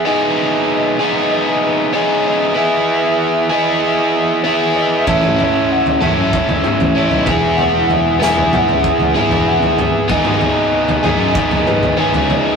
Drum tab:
SD |----------------|----------------|----------------|----o-----------|
T2 |----------------|----------------|-o----o---o-----|------o---o---o-|
FT |----------------|----------------|o-o--oo-oo-o-oo-|o-o--ooooo-o-oo-|
BD |----------------|----------------|o-------o-----o-|--------o-------|

SD |----------------|
T2 |-o----o---o-----|
FT |o-o--oo-oo-o-oo-|
BD |o-------o-------|